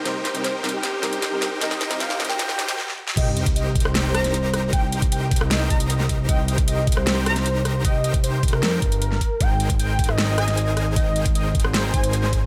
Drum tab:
CC |--------------------------------|--------------------------------|x-------------------------------|--------------------------------|
HH |x---x-x-x---xx--x---x-x-x---x---|x---x-x-x---xx--x---x-x---------|x---x-x-x---xx--x---x-x-x---x---|x---x-x-x---xx--x---x-x-x---x---|
SD |o---o---o---o---o---o---o---o---|o-o-o-o-o-o-o-o-o-o-o-o-o-o---o-|--------------r-o---r-o-----r---|--------------r-o---------o-----|
BD |--------------------------------|--------------------------------|o-----o-----o-------------------|o-----o-----o-------o-------o---|

CC |--------------------------------|--------------------------------|--------------------------------|--------------------------------|
HH |x---x-x-x---xx--x---x-x-x---x---|x---x-x-x---xx--x---x-x-x---x---|x---x-x-x---xx--x---x-x-x---x---|x---x-x-x---xx--x---x-x-x---x---|
SD |--------------r-o---r-o-----r---|--------------r-o---------o-----|--------------r-o---r-o-----r---|--------------r-o---------o-----|
BD |o-----o-----o-------------------|o-----o-----o-------o-------o---|o-----o-----o-------------------|o-----o-----o-------o-------o---|